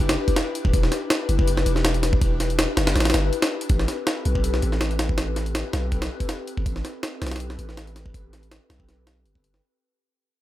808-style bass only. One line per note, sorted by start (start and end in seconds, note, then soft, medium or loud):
0.00 0.16 F#1 medium
0.65 0.73 D1 medium
0.74 0.90 E1 loud
1.29 1.65 F#1 medium
1.66 2.67 E1 medium
2.77 2.95 F#1 medium
2.96 3.12 A1 medium
3.14 3.31 G1 medium
3.70 3.87 A1 loud
4.26 4.61 B1 medium
4.63 5.63 A1 medium
5.74 6.09 B1 medium
6.58 6.65 G1 medium
6.66 6.83 A1 loud
7.22 7.57 B1 medium
7.59 8.59 A1 medium
8.70 9.27 B1 medium
9.25 9.61 G1 medium